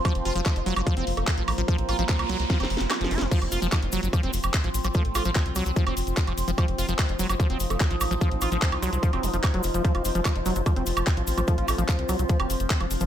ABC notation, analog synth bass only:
X:1
M:4/4
L:1/16
Q:1/4=147
K:F
V:1 name="Analog synth bass" clef=bass
z F,,, F,,, F,,, z F,,, F,,, _G,,, z F,,, F,,, F,,, z A,,, A,,, A,,, | z A,,, A,,, A,,, z C,, C,, C,, z F,,, F,,, F,,, z F,,, F,,, F,,, | z F,,, F,,, F,,, z F,,, F,,, _G,,, z F,,, F,,, F,,, z A,,, A,,, A,,, | z A,,, A,,, A,,, z C,, C,, C,, z F,,, F,,, F,,, z F,,, F,,, F,,, |
z F,,, F,,, F,,, z F,,, F,,, _G,,, z F,,, F,,, F,,, z A,,, A,,, A,,, | z A,,, A,,, A,,, z C,, C,, C,, z F,,, F,,, F,,, z F,,, F,,, F,,, | z F,,, F,,, F,,, z F,,, F,,, _G,,, z F,,, F,,, F,,, z A,,, A,,, A,,, | z A,,, A,,, A,,, z C,, C,, C,, z F,,, F,,, F,,, z F,,, F,,, F,,, |]